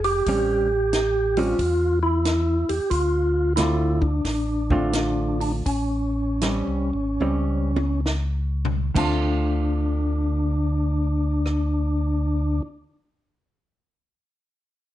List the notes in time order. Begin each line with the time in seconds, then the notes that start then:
Already playing: F1
0.04 G4, open hi-hat
0.26 A1 G3 C4 C#4, kick, open hi-hat
0.93 snare, closed hi-hat
1.37 G3 C4 C#4 F4, open hi-hat
1.59 E2, kick, open hi-hat
2.03 E4
2.25 snare, closed hi-hat
2.69 E2 G4, open hi-hat
2.90 D2 F4, kick, open hi-hat
3.56 D3 A3 C4 E4 F4, snare, closed hi-hat
4.01 D4, kick
4.25 A1, kick, snare, open hi-hat
4.70 D3 A3 C4 F4, kick
4.93 snare, closed hi-hat
5.41 D4, open hi-hat
5.66 A1 C#4, kick, open hi-hat
6.41 G3 C4 C#4, snare, closed hi-hat
6.67 C2
6.93 G#1
7.20 C#2 G3 C4 C#4, high tom
7.76 high tom
8.06 snare
8.65 floor tom
8.95 D2 D3 A3 C4 D4 F4, kick, crash
11.46 cross-stick